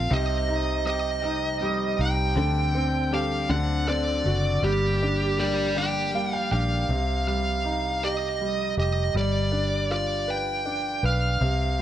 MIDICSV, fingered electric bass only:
0, 0, Header, 1, 2, 480
1, 0, Start_track
1, 0, Key_signature, -2, "minor"
1, 0, Tempo, 752823
1, 69, Time_signature, 6, 3, 24, 8
1, 7535, End_track
2, 0, Start_track
2, 0, Title_t, "Fingered electric bass"
2, 0, Program_c, 0, 33
2, 70, Note_on_c, 0, 36, 100
2, 1245, Note_off_c, 0, 36, 0
2, 1270, Note_on_c, 0, 36, 86
2, 1496, Note_off_c, 0, 36, 0
2, 1505, Note_on_c, 0, 38, 107
2, 2203, Note_off_c, 0, 38, 0
2, 2229, Note_on_c, 0, 38, 90
2, 2685, Note_off_c, 0, 38, 0
2, 2713, Note_on_c, 0, 30, 86
2, 2938, Note_off_c, 0, 30, 0
2, 2949, Note_on_c, 0, 31, 100
2, 4125, Note_off_c, 0, 31, 0
2, 4154, Note_on_c, 0, 34, 78
2, 4378, Note_off_c, 0, 34, 0
2, 4393, Note_on_c, 0, 36, 84
2, 5566, Note_off_c, 0, 36, 0
2, 5593, Note_on_c, 0, 29, 83
2, 5817, Note_off_c, 0, 29, 0
2, 5830, Note_on_c, 0, 31, 94
2, 7004, Note_off_c, 0, 31, 0
2, 7032, Note_on_c, 0, 35, 83
2, 7256, Note_off_c, 0, 35, 0
2, 7274, Note_on_c, 0, 36, 97
2, 7535, Note_off_c, 0, 36, 0
2, 7535, End_track
0, 0, End_of_file